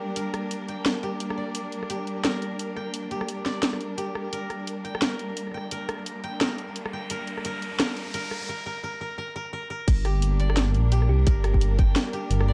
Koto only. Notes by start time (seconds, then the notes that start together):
Already playing: G4 D5
0.16 A#4
0.69 G5
1.03 G4
1.38 D5
1.90 G4
2.24 A#4
2.76 G5
3.11 G4
3.46 D5
3.97 G4
4.33 A#4
4.85 G5
5.02 A#4
5.54 G5
5.72 A#4
6.24 G5
6.41 A#4
6.93 G5
7.11 A#4
7.45 A#4
7.80 A#4
8.14 A#4
8.49 A#4
8.66 A#4
8.84 A#4
9.01 A#4
9.18 A#4
9.36 A#4
9.53 A#4
9.70 A#4
10.05 G4
10.40 D5
10.92 G4
11.27 A#4
11.79 G5
12.13 G4
12.48 D5